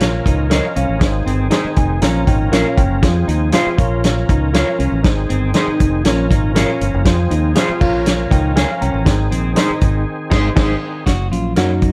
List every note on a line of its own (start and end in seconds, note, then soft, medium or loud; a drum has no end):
0.00 0.19 A#1 medium
0.00 0.47 A#2 medium
0.00 0.99 F3 medium
0.00 1.00 C#4 medium
0.00 0.35 F4 medium
0.00 0.36 A#4 medium
0.00 1.00 A#4 medium
0.00 0.36 C#5 medium
0.00 snare loud
0.00 closed hi-hat medium
0.26 0.59 C#2 loud
0.26 0.46 D#4 medium
0.26 kick medium
0.26 closed hi-hat medium
0.50 0.63 A#4 medium
0.50 0.75 C5 medium
0.50 0.64 C#5 medium
0.50 0.75 D#5 medium
0.50 0.64 F5 medium
0.50 snare loud
0.50 closed hi-hat loud
0.76 0.88 C2 medium
0.76 0.97 C#4 medium
0.76 1.25 C#5 medium
0.76 1.24 F5 medium
0.76 closed hi-hat medium
0.89 1.00 A1 medium
0.99 1.23 G#1 loud
0.99 1.73 G#2 medium
0.99 2.01 D#3 medium
0.99 2.01 C4 medium
0.99 1.29 D#4 medium
0.99 2.00 G#4 medium
0.99 1.29 G#4 medium
0.99 1.30 C5 medium
0.99 kick loud
0.99 snare loud
0.99 closed hi-hat medium
1.26 1.48 G1 medium
1.26 1.47 C4 medium
1.26 closed hi-hat medium
1.51 1.64 D#4 medium
1.51 1.79 D#4 medium
1.51 1.99 D#4 medium
1.51 1.65 G#4 medium
1.51 1.80 G#4 medium
1.51 1.65 C5 medium
1.51 1.80 C5 loud
1.51 snare loud
1.51 closed hi-hat loud
1.65 muted fingered electric bass stroke soft
1.76 1.99 F1 medium
1.76 2.01 G#5 medium
1.76 kick medium
1.76 closed hi-hat medium
2.01 2.24 A#1 loud
2.01 2.74 A#2 medium
2.01 5.02 F3 medium
2.01 3.02 C#4 medium
2.01 2.23 C#4 medium
2.01 2.30 F4 medium
2.01 2.30 A#4 medium
2.01 3.03 A#4 medium
2.01 2.30 C#5 medium
2.01 2.26 A#5 medium
2.01 snare loud
2.01 closed hi-hat loud
2.27 2.49 G#1 medium
2.27 2.48 D#4 medium
2.27 2.51 G5 medium
2.27 kick medium
2.27 closed hi-hat medium
2.52 2.63 A#1 medium
2.52 3.00 C#4 medium
2.52 2.80 F4 medium
2.52 2.65 A#4 medium
2.52 2.81 A#4 medium
2.52 2.66 C#5 medium
2.52 2.81 C#5 medium
2.52 2.76 F5 medium
2.52 2.66 F5 medium
2.52 snare loud
2.52 closed hi-hat loud
2.77 3.00 F#1 medium
2.77 3.01 G5 medium
2.77 kick medium
2.77 closed hi-hat medium
3.02 3.25 F2 loud
3.02 3.78 C4 medium
3.02 3.31 F4 medium
3.02 3.31 G#4 medium
3.02 3.78 G#4 medium
3.02 3.31 C5 medium
3.02 kick loud
3.02 snare loud
3.02 closed hi-hat medium
3.28 3.50 D#2 medium
3.28 3.48 D#4 medium
3.28 closed hi-hat medium
3.52 3.76 F4 medium
3.52 4.01 F4 medium
3.52 3.66 G#4 medium
3.52 3.79 G#4 medium
3.52 3.66 C5 loud
3.52 3.79 C5 loud
3.52 3.67 F5 loud
3.52 snare loud
3.52 closed hi-hat loud
3.66 muted fingered electric bass stroke soft
3.77 4.23 A#1 medium
3.77 4.50 A#2 medium
3.77 5.03 C#4 medium
3.77 4.39 F4 medium
3.77 4.39 A#4 medium
3.77 5.04 A#4 medium
3.77 4.40 C#5 loud
3.77 kick loud
3.77 closed hi-hat medium
4.04 snare loud
4.04 closed hi-hat medium
4.29 4.62 C#2 medium
4.29 4.50 D#4 medium
4.29 kick medium
4.29 closed hi-hat medium
4.53 4.81 F4 medium
4.53 4.67 A#4 medium
4.53 4.82 A#4 medium
4.53 4.67 C#5 medium
4.53 4.82 C#5 loud
4.53 4.68 F5 medium
4.53 snare loud
4.53 closed hi-hat loud
4.79 4.91 C2 medium
4.79 5.00 C#4 medium
4.79 closed hi-hat medium
4.92 5.03 A1 medium
5.03 5.27 G#1 loud
5.03 5.76 G#2 medium
5.03 6.04 D#3 medium
5.03 6.04 C4 medium
5.03 5.32 D#4 medium
5.03 6.04 G#4 medium
5.03 5.32 G#4 medium
5.03 5.33 C5 medium
5.03 kick loud
5.03 snare loud
5.03 closed hi-hat medium
5.29 5.52 G1 medium
5.29 5.50 C4 medium
5.29 closed hi-hat medium
5.54 5.82 D#4 medium
5.54 5.68 D#4 medium
5.54 6.02 D#4 medium
5.54 5.83 G#4 medium
5.54 5.68 G#4 medium
5.54 5.83 C5 loud
5.54 5.69 C5 medium
5.54 snare loud
5.54 closed hi-hat loud
5.68 muted fingered electric bass stroke soft
5.80 6.02 F1 medium
5.80 kick medium
5.80 closed hi-hat medium
6.04 6.27 A#1 loud
6.04 6.77 A#2 medium
6.04 7.05 F3 medium
6.04 6.26 C#4 medium
6.04 7.05 C#4 medium
6.04 6.32 F4 medium
6.04 6.33 A#4 medium
6.04 7.06 A#4 medium
6.04 6.33 C#5 medium
6.04 snare loud
6.04 closed hi-hat loud
6.31 6.64 G#1 medium
6.31 6.51 D#4 medium
6.31 kick medium
6.31 closed hi-hat medium
6.54 7.03 C#4 medium
6.54 6.83 F4 medium
6.54 6.83 A#4 medium
6.54 6.68 A#4 medium
6.54 6.83 C#5 medium
6.54 6.69 C#5 medium
6.54 6.69 F5 medium
6.54 snare loud
6.54 closed hi-hat loud
6.81 6.92 G1 loud
6.81 closed hi-hat medium
6.94 7.05 F#1 loud
7.05 7.28 F2 loud
7.05 9.05 F3 medium
7.05 7.81 C4 medium
7.05 7.33 F4 medium
7.05 7.34 G#4 medium
7.05 7.82 G#4 medium
7.05 7.34 C5 medium
7.05 kick loud
7.05 snare loud
7.05 closed hi-hat medium
7.31 7.53 D#2 medium
7.31 7.51 D#4 medium
7.31 closed hi-hat medium
7.55 8.03 F4 medium
7.55 7.79 F4 medium
7.55 7.68 G#4 medium
7.55 7.81 G#4 medium
7.55 7.69 C5 medium
7.55 7.82 C5 loud
7.55 7.69 F5 medium
7.55 snare loud
7.55 closed hi-hat loud
7.69 muted fingered electric bass stroke soft
7.81 8.25 A#1 medium
7.81 8.52 A#2 medium
7.81 9.06 C#4 medium
7.81 8.41 F4 medium
7.81 8.41 A#4 medium
7.81 9.05 A#4 medium
7.81 8.42 C#5 medium
7.81 kick loud
7.81 crash medium
8.06 snare loud
8.06 closed hi-hat loud
8.30 8.64 C#2 medium
8.30 8.51 D#4 medium
8.30 8.56 D#5 medium
8.30 8.55 G5 medium
8.30 kick medium
8.30 closed hi-hat medium
8.56 8.69 A#4 medium
8.56 8.69 C#5 medium
8.56 8.80 F5 medium
8.56 8.70 F5 medium
8.56 8.80 G#5 medium
8.56 snare loud
8.56 closed hi-hat loud
8.81 8.93 C2 medium
8.81 9.02 C#4 medium
8.81 9.29 G5 medium
8.81 9.29 A#5 medium
8.81 closed hi-hat medium
8.94 9.05 A1 medium
9.05 9.28 G#1 loud
9.05 9.77 G#2 medium
9.05 11.04 D#3 medium
9.05 11.04 C4 medium
9.05 9.33 D#4 medium
9.05 9.34 G#4 medium
9.05 11.05 G#4 medium
9.05 9.34 C5 medium
9.05 kick loud
9.05 snare loud
9.05 closed hi-hat loud
9.31 9.54 A#1 medium
9.31 9.52 C4 medium
9.31 closed hi-hat medium
9.55 9.84 D#4 medium
9.55 9.69 D#4 medium
9.55 10.04 D#4 medium
9.55 9.84 G#4 medium
9.55 9.70 G#4 medium
9.55 9.84 C5 loud
9.55 9.70 C5 loud
9.55 snare loud
9.55 closed hi-hat loud
9.70 muted fingered electric bass stroke soft
9.81 10.04 G#1 medium
9.81 kick medium
9.81 closed hi-hat medium
10.30 10.49 G#1 loud
10.30 10.49 G#2 loud
10.30 10.48 D#4 loud
10.30 10.48 D#4 medium
10.30 10.49 G#4 loud
10.30 10.49 G#4 medium
10.30 10.49 C5 loud
10.30 kick loud
10.30 snare medium
10.30 crash medium
10.56 10.74 G#1 loud
10.56 10.73 D#4 loud
10.56 10.74 G#4 loud
10.56 10.74 G#4 medium
10.56 10.74 C5 medium
10.56 10.74 C5 loud
10.56 kick loud
10.56 snare loud
10.56 crash medium
11.06 11.29 F#1 medium
11.06 11.27 F#4 medium
11.06 kick medium
11.06 snare loud
11.06 closed hi-hat medium
11.31 11.54 A#1 medium
11.31 11.92 F#3 soft
11.31 11.92 A#3 soft
11.31 11.92 C#4 medium
11.31 11.52 F4 medium
11.31 closed hi-hat medium
11.56 11.90 F#2 loud
11.56 11.92 D#4 medium
11.56 11.92 F#4 medium
11.56 11.70 A#4 medium
11.56 11.70 C#5 medium
11.56 11.71 F#5 medium
11.56 snare loud
11.56 closed hi-hat medium
11.82 kick medium
11.82 closed hi-hat medium